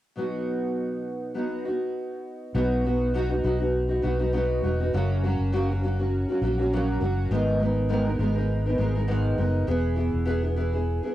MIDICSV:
0, 0, Header, 1, 3, 480
1, 0, Start_track
1, 0, Key_signature, 5, "major"
1, 0, Tempo, 594648
1, 131, Time_signature, 4, 2, 24, 8
1, 8999, End_track
2, 0, Start_track
2, 0, Title_t, "Steel-string acoustic guitar"
2, 0, Program_c, 0, 25
2, 127, Note_on_c, 0, 47, 62
2, 135, Note_on_c, 0, 54, 55
2, 141, Note_on_c, 0, 59, 56
2, 149, Note_on_c, 0, 63, 58
2, 153, Note_on_c, 0, 66, 65
2, 1080, Note_off_c, 0, 54, 0
2, 1083, Note_on_c, 0, 54, 50
2, 1085, Note_off_c, 0, 59, 0
2, 1088, Note_on_c, 0, 59, 57
2, 1091, Note_off_c, 0, 47, 0
2, 1092, Note_off_c, 0, 63, 0
2, 1094, Note_off_c, 0, 66, 0
2, 1095, Note_on_c, 0, 63, 59
2, 1098, Note_on_c, 0, 66, 59
2, 1323, Note_off_c, 0, 66, 0
2, 1328, Note_off_c, 0, 63, 0
2, 1329, Note_off_c, 0, 54, 0
2, 1331, Note_off_c, 0, 59, 0
2, 1333, Note_on_c, 0, 66, 49
2, 1337, Note_on_c, 0, 63, 40
2, 1344, Note_on_c, 0, 59, 39
2, 2054, Note_off_c, 0, 59, 0
2, 2055, Note_on_c, 0, 47, 66
2, 2057, Note_off_c, 0, 66, 0
2, 2057, Note_on_c, 0, 54, 73
2, 2058, Note_on_c, 0, 59, 80
2, 2059, Note_off_c, 0, 63, 0
2, 2060, Note_on_c, 0, 66, 79
2, 2062, Note_on_c, 0, 63, 77
2, 2289, Note_off_c, 0, 54, 0
2, 2295, Note_off_c, 0, 47, 0
2, 2296, Note_off_c, 0, 59, 0
2, 2297, Note_off_c, 0, 66, 0
2, 2298, Note_on_c, 0, 54, 58
2, 2299, Note_off_c, 0, 63, 0
2, 2307, Note_on_c, 0, 59, 57
2, 2307, Note_on_c, 0, 63, 64
2, 2313, Note_on_c, 0, 66, 68
2, 2529, Note_off_c, 0, 54, 0
2, 2529, Note_off_c, 0, 59, 0
2, 2534, Note_on_c, 0, 47, 73
2, 2535, Note_off_c, 0, 63, 0
2, 2538, Note_off_c, 0, 66, 0
2, 2539, Note_on_c, 0, 54, 72
2, 2539, Note_on_c, 0, 59, 74
2, 2545, Note_on_c, 0, 63, 94
2, 2548, Note_on_c, 0, 66, 89
2, 2658, Note_off_c, 0, 66, 0
2, 2660, Note_off_c, 0, 63, 0
2, 2667, Note_off_c, 0, 47, 0
2, 2668, Note_on_c, 0, 66, 55
2, 2669, Note_off_c, 0, 54, 0
2, 2669, Note_off_c, 0, 59, 0
2, 2670, Note_on_c, 0, 63, 53
2, 2680, Note_on_c, 0, 59, 41
2, 2768, Note_off_c, 0, 59, 0
2, 2771, Note_off_c, 0, 63, 0
2, 2773, Note_on_c, 0, 54, 59
2, 2775, Note_off_c, 0, 66, 0
2, 2777, Note_on_c, 0, 59, 67
2, 2780, Note_on_c, 0, 63, 67
2, 2787, Note_on_c, 0, 66, 77
2, 2887, Note_off_c, 0, 66, 0
2, 2896, Note_off_c, 0, 63, 0
2, 2897, Note_on_c, 0, 66, 54
2, 2902, Note_off_c, 0, 59, 0
2, 2905, Note_on_c, 0, 63, 52
2, 2906, Note_off_c, 0, 54, 0
2, 2912, Note_on_c, 0, 59, 43
2, 3128, Note_off_c, 0, 66, 0
2, 3137, Note_off_c, 0, 63, 0
2, 3137, Note_on_c, 0, 66, 56
2, 3146, Note_off_c, 0, 59, 0
2, 3147, Note_on_c, 0, 63, 43
2, 3156, Note_on_c, 0, 59, 43
2, 3245, Note_off_c, 0, 59, 0
2, 3245, Note_off_c, 0, 63, 0
2, 3246, Note_on_c, 0, 54, 68
2, 3250, Note_off_c, 0, 66, 0
2, 3254, Note_on_c, 0, 59, 71
2, 3255, Note_on_c, 0, 63, 71
2, 3260, Note_on_c, 0, 66, 77
2, 3373, Note_off_c, 0, 66, 0
2, 3380, Note_off_c, 0, 63, 0
2, 3382, Note_off_c, 0, 54, 0
2, 3383, Note_on_c, 0, 66, 58
2, 3387, Note_off_c, 0, 59, 0
2, 3390, Note_on_c, 0, 63, 51
2, 3395, Note_on_c, 0, 59, 51
2, 3491, Note_off_c, 0, 59, 0
2, 3493, Note_off_c, 0, 63, 0
2, 3493, Note_off_c, 0, 66, 0
2, 3493, Note_on_c, 0, 47, 74
2, 3494, Note_on_c, 0, 54, 74
2, 3500, Note_on_c, 0, 59, 76
2, 3503, Note_on_c, 0, 63, 82
2, 3505, Note_on_c, 0, 66, 82
2, 3729, Note_off_c, 0, 54, 0
2, 3731, Note_off_c, 0, 59, 0
2, 3734, Note_off_c, 0, 47, 0
2, 3738, Note_on_c, 0, 54, 62
2, 3739, Note_off_c, 0, 63, 0
2, 3740, Note_off_c, 0, 66, 0
2, 3741, Note_on_c, 0, 59, 62
2, 3748, Note_on_c, 0, 63, 67
2, 3754, Note_on_c, 0, 66, 68
2, 3864, Note_off_c, 0, 66, 0
2, 3868, Note_off_c, 0, 54, 0
2, 3870, Note_off_c, 0, 59, 0
2, 3873, Note_off_c, 0, 63, 0
2, 3874, Note_on_c, 0, 66, 56
2, 3883, Note_on_c, 0, 63, 49
2, 3888, Note_on_c, 0, 59, 43
2, 3978, Note_off_c, 0, 66, 0
2, 3982, Note_on_c, 0, 42, 74
2, 3983, Note_off_c, 0, 63, 0
2, 3985, Note_off_c, 0, 59, 0
2, 3987, Note_on_c, 0, 54, 80
2, 3989, Note_on_c, 0, 49, 83
2, 3989, Note_on_c, 0, 58, 90
2, 3991, Note_on_c, 0, 61, 81
2, 3994, Note_on_c, 0, 66, 82
2, 4217, Note_off_c, 0, 54, 0
2, 4218, Note_off_c, 0, 42, 0
2, 4221, Note_off_c, 0, 49, 0
2, 4221, Note_off_c, 0, 58, 0
2, 4223, Note_off_c, 0, 61, 0
2, 4224, Note_off_c, 0, 66, 0
2, 4227, Note_on_c, 0, 54, 59
2, 4230, Note_on_c, 0, 58, 54
2, 4238, Note_on_c, 0, 61, 64
2, 4243, Note_on_c, 0, 66, 67
2, 4455, Note_off_c, 0, 54, 0
2, 4457, Note_off_c, 0, 58, 0
2, 4459, Note_off_c, 0, 66, 0
2, 4459, Note_on_c, 0, 42, 78
2, 4459, Note_on_c, 0, 49, 79
2, 4461, Note_off_c, 0, 61, 0
2, 4465, Note_on_c, 0, 54, 82
2, 4466, Note_on_c, 0, 58, 91
2, 4469, Note_on_c, 0, 66, 95
2, 4471, Note_on_c, 0, 61, 88
2, 4589, Note_off_c, 0, 42, 0
2, 4589, Note_off_c, 0, 49, 0
2, 4590, Note_off_c, 0, 66, 0
2, 4591, Note_off_c, 0, 54, 0
2, 4592, Note_off_c, 0, 58, 0
2, 4594, Note_off_c, 0, 61, 0
2, 4599, Note_on_c, 0, 66, 50
2, 4608, Note_on_c, 0, 61, 51
2, 4615, Note_on_c, 0, 58, 49
2, 4616, Note_on_c, 0, 54, 53
2, 4696, Note_off_c, 0, 54, 0
2, 4700, Note_off_c, 0, 58, 0
2, 4701, Note_off_c, 0, 66, 0
2, 4705, Note_off_c, 0, 61, 0
2, 4706, Note_on_c, 0, 54, 56
2, 4709, Note_on_c, 0, 58, 65
2, 4715, Note_on_c, 0, 61, 67
2, 4721, Note_on_c, 0, 66, 74
2, 4827, Note_off_c, 0, 66, 0
2, 4832, Note_off_c, 0, 54, 0
2, 4834, Note_off_c, 0, 58, 0
2, 4834, Note_off_c, 0, 61, 0
2, 4837, Note_on_c, 0, 66, 55
2, 4844, Note_on_c, 0, 61, 51
2, 4849, Note_on_c, 0, 58, 46
2, 4852, Note_on_c, 0, 54, 44
2, 5063, Note_off_c, 0, 66, 0
2, 5073, Note_off_c, 0, 61, 0
2, 5073, Note_on_c, 0, 66, 55
2, 5077, Note_off_c, 0, 58, 0
2, 5079, Note_off_c, 0, 54, 0
2, 5082, Note_on_c, 0, 61, 52
2, 5088, Note_on_c, 0, 58, 42
2, 5093, Note_on_c, 0, 54, 46
2, 5171, Note_off_c, 0, 54, 0
2, 5177, Note_off_c, 0, 66, 0
2, 5179, Note_off_c, 0, 58, 0
2, 5181, Note_on_c, 0, 54, 65
2, 5182, Note_off_c, 0, 61, 0
2, 5189, Note_on_c, 0, 58, 66
2, 5195, Note_on_c, 0, 61, 72
2, 5201, Note_on_c, 0, 66, 68
2, 5303, Note_off_c, 0, 66, 0
2, 5309, Note_off_c, 0, 54, 0
2, 5313, Note_off_c, 0, 58, 0
2, 5313, Note_off_c, 0, 61, 0
2, 5313, Note_on_c, 0, 66, 61
2, 5322, Note_on_c, 0, 61, 56
2, 5326, Note_on_c, 0, 54, 48
2, 5327, Note_on_c, 0, 58, 53
2, 5417, Note_off_c, 0, 66, 0
2, 5422, Note_off_c, 0, 61, 0
2, 5423, Note_off_c, 0, 54, 0
2, 5424, Note_off_c, 0, 58, 0
2, 5430, Note_on_c, 0, 42, 75
2, 5433, Note_on_c, 0, 49, 77
2, 5435, Note_on_c, 0, 54, 73
2, 5435, Note_on_c, 0, 58, 83
2, 5437, Note_on_c, 0, 61, 88
2, 5439, Note_on_c, 0, 66, 78
2, 5644, Note_off_c, 0, 54, 0
2, 5649, Note_off_c, 0, 58, 0
2, 5653, Note_on_c, 0, 54, 71
2, 5655, Note_off_c, 0, 61, 0
2, 5658, Note_off_c, 0, 66, 0
2, 5659, Note_on_c, 0, 58, 67
2, 5662, Note_off_c, 0, 42, 0
2, 5663, Note_off_c, 0, 49, 0
2, 5665, Note_on_c, 0, 61, 71
2, 5668, Note_on_c, 0, 66, 77
2, 5893, Note_off_c, 0, 54, 0
2, 5896, Note_off_c, 0, 58, 0
2, 5897, Note_on_c, 0, 44, 76
2, 5899, Note_off_c, 0, 61, 0
2, 5899, Note_on_c, 0, 56, 84
2, 5900, Note_off_c, 0, 66, 0
2, 5902, Note_on_c, 0, 51, 73
2, 5904, Note_on_c, 0, 59, 86
2, 5905, Note_on_c, 0, 63, 86
2, 5908, Note_on_c, 0, 70, 85
2, 6124, Note_off_c, 0, 56, 0
2, 6133, Note_on_c, 0, 56, 63
2, 6135, Note_off_c, 0, 44, 0
2, 6136, Note_off_c, 0, 59, 0
2, 6137, Note_off_c, 0, 51, 0
2, 6139, Note_off_c, 0, 63, 0
2, 6140, Note_off_c, 0, 70, 0
2, 6146, Note_on_c, 0, 59, 60
2, 6150, Note_on_c, 0, 63, 68
2, 6155, Note_on_c, 0, 70, 65
2, 6364, Note_off_c, 0, 56, 0
2, 6364, Note_off_c, 0, 63, 0
2, 6366, Note_on_c, 0, 44, 82
2, 6368, Note_off_c, 0, 59, 0
2, 6369, Note_off_c, 0, 70, 0
2, 6371, Note_on_c, 0, 51, 83
2, 6374, Note_on_c, 0, 56, 82
2, 6374, Note_on_c, 0, 63, 84
2, 6378, Note_on_c, 0, 59, 82
2, 6379, Note_on_c, 0, 70, 93
2, 6491, Note_off_c, 0, 70, 0
2, 6499, Note_off_c, 0, 63, 0
2, 6500, Note_off_c, 0, 59, 0
2, 6501, Note_off_c, 0, 44, 0
2, 6501, Note_on_c, 0, 70, 53
2, 6504, Note_off_c, 0, 51, 0
2, 6505, Note_off_c, 0, 56, 0
2, 6509, Note_on_c, 0, 63, 52
2, 6510, Note_on_c, 0, 59, 50
2, 6514, Note_on_c, 0, 56, 41
2, 6599, Note_off_c, 0, 56, 0
2, 6602, Note_off_c, 0, 59, 0
2, 6609, Note_off_c, 0, 63, 0
2, 6609, Note_on_c, 0, 56, 62
2, 6611, Note_off_c, 0, 70, 0
2, 6612, Note_on_c, 0, 59, 66
2, 6618, Note_on_c, 0, 63, 70
2, 6623, Note_on_c, 0, 70, 72
2, 6726, Note_off_c, 0, 70, 0
2, 6732, Note_off_c, 0, 63, 0
2, 6736, Note_on_c, 0, 70, 51
2, 6738, Note_off_c, 0, 59, 0
2, 6742, Note_on_c, 0, 63, 55
2, 6743, Note_off_c, 0, 56, 0
2, 6748, Note_on_c, 0, 59, 49
2, 6756, Note_on_c, 0, 56, 49
2, 6980, Note_off_c, 0, 70, 0
2, 6983, Note_off_c, 0, 63, 0
2, 6986, Note_off_c, 0, 59, 0
2, 6988, Note_on_c, 0, 70, 64
2, 6990, Note_off_c, 0, 56, 0
2, 6992, Note_on_c, 0, 63, 47
2, 6999, Note_on_c, 0, 56, 48
2, 7000, Note_on_c, 0, 59, 55
2, 7078, Note_off_c, 0, 56, 0
2, 7083, Note_off_c, 0, 59, 0
2, 7087, Note_off_c, 0, 63, 0
2, 7087, Note_on_c, 0, 56, 69
2, 7093, Note_on_c, 0, 59, 65
2, 7094, Note_off_c, 0, 70, 0
2, 7097, Note_on_c, 0, 63, 67
2, 7104, Note_on_c, 0, 70, 78
2, 7215, Note_off_c, 0, 70, 0
2, 7222, Note_off_c, 0, 56, 0
2, 7222, Note_off_c, 0, 63, 0
2, 7224, Note_off_c, 0, 59, 0
2, 7225, Note_on_c, 0, 70, 63
2, 7232, Note_on_c, 0, 63, 58
2, 7237, Note_on_c, 0, 59, 54
2, 7241, Note_on_c, 0, 56, 51
2, 7319, Note_off_c, 0, 56, 0
2, 7323, Note_off_c, 0, 59, 0
2, 7323, Note_off_c, 0, 63, 0
2, 7327, Note_on_c, 0, 44, 81
2, 7329, Note_on_c, 0, 56, 86
2, 7330, Note_off_c, 0, 70, 0
2, 7330, Note_on_c, 0, 51, 72
2, 7333, Note_on_c, 0, 59, 79
2, 7333, Note_on_c, 0, 63, 75
2, 7340, Note_on_c, 0, 70, 82
2, 7562, Note_off_c, 0, 56, 0
2, 7565, Note_off_c, 0, 59, 0
2, 7569, Note_off_c, 0, 44, 0
2, 7571, Note_off_c, 0, 51, 0
2, 7571, Note_on_c, 0, 56, 60
2, 7572, Note_off_c, 0, 63, 0
2, 7575, Note_on_c, 0, 59, 65
2, 7576, Note_off_c, 0, 70, 0
2, 7585, Note_on_c, 0, 63, 63
2, 7591, Note_on_c, 0, 70, 71
2, 7803, Note_off_c, 0, 59, 0
2, 7805, Note_off_c, 0, 56, 0
2, 7808, Note_on_c, 0, 52, 80
2, 7811, Note_off_c, 0, 63, 0
2, 7813, Note_on_c, 0, 59, 87
2, 7814, Note_off_c, 0, 70, 0
2, 7814, Note_on_c, 0, 64, 89
2, 7817, Note_on_c, 0, 68, 97
2, 8030, Note_off_c, 0, 52, 0
2, 8033, Note_off_c, 0, 59, 0
2, 8039, Note_off_c, 0, 64, 0
2, 8039, Note_on_c, 0, 52, 59
2, 8043, Note_off_c, 0, 68, 0
2, 8043, Note_on_c, 0, 59, 58
2, 8049, Note_on_c, 0, 64, 65
2, 8053, Note_on_c, 0, 68, 61
2, 8268, Note_off_c, 0, 52, 0
2, 8269, Note_off_c, 0, 59, 0
2, 8277, Note_off_c, 0, 64, 0
2, 8277, Note_on_c, 0, 52, 83
2, 8279, Note_on_c, 0, 59, 82
2, 8284, Note_off_c, 0, 68, 0
2, 8286, Note_on_c, 0, 64, 86
2, 8293, Note_on_c, 0, 68, 95
2, 8406, Note_off_c, 0, 68, 0
2, 8414, Note_off_c, 0, 64, 0
2, 8415, Note_on_c, 0, 68, 54
2, 8416, Note_off_c, 0, 52, 0
2, 8417, Note_off_c, 0, 59, 0
2, 8423, Note_on_c, 0, 64, 48
2, 8428, Note_on_c, 0, 59, 51
2, 8520, Note_off_c, 0, 59, 0
2, 8525, Note_off_c, 0, 64, 0
2, 8527, Note_off_c, 0, 68, 0
2, 8527, Note_on_c, 0, 52, 67
2, 8530, Note_on_c, 0, 59, 61
2, 8535, Note_on_c, 0, 64, 62
2, 8536, Note_on_c, 0, 68, 68
2, 8650, Note_off_c, 0, 68, 0
2, 8659, Note_on_c, 0, 68, 53
2, 8661, Note_off_c, 0, 52, 0
2, 8661, Note_off_c, 0, 64, 0
2, 8663, Note_off_c, 0, 59, 0
2, 8671, Note_on_c, 0, 64, 46
2, 8675, Note_on_c, 0, 59, 44
2, 8895, Note_off_c, 0, 68, 0
2, 8902, Note_off_c, 0, 64, 0
2, 8904, Note_on_c, 0, 68, 53
2, 8909, Note_off_c, 0, 59, 0
2, 8912, Note_on_c, 0, 64, 46
2, 8917, Note_on_c, 0, 59, 40
2, 8999, Note_off_c, 0, 59, 0
2, 8999, Note_off_c, 0, 64, 0
2, 8999, Note_off_c, 0, 68, 0
2, 8999, End_track
3, 0, Start_track
3, 0, Title_t, "Fingered electric bass"
3, 0, Program_c, 1, 33
3, 2056, Note_on_c, 1, 35, 107
3, 2743, Note_off_c, 1, 35, 0
3, 2780, Note_on_c, 1, 35, 85
3, 3225, Note_off_c, 1, 35, 0
3, 3260, Note_on_c, 1, 35, 86
3, 3705, Note_off_c, 1, 35, 0
3, 3738, Note_on_c, 1, 28, 78
3, 3957, Note_off_c, 1, 28, 0
3, 3987, Note_on_c, 1, 30, 95
3, 4323, Note_off_c, 1, 30, 0
3, 4350, Note_on_c, 1, 30, 80
3, 5035, Note_off_c, 1, 30, 0
3, 5177, Note_on_c, 1, 34, 85
3, 5623, Note_off_c, 1, 34, 0
3, 5653, Note_on_c, 1, 30, 86
3, 5874, Note_off_c, 1, 30, 0
3, 5897, Note_on_c, 1, 32, 98
3, 6582, Note_off_c, 1, 32, 0
3, 6611, Note_on_c, 1, 32, 92
3, 7059, Note_off_c, 1, 32, 0
3, 7093, Note_on_c, 1, 32, 93
3, 7540, Note_off_c, 1, 32, 0
3, 7571, Note_on_c, 1, 30, 84
3, 7792, Note_off_c, 1, 30, 0
3, 7811, Note_on_c, 1, 28, 90
3, 8153, Note_off_c, 1, 28, 0
3, 8183, Note_on_c, 1, 28, 80
3, 8871, Note_off_c, 1, 28, 0
3, 8999, End_track
0, 0, End_of_file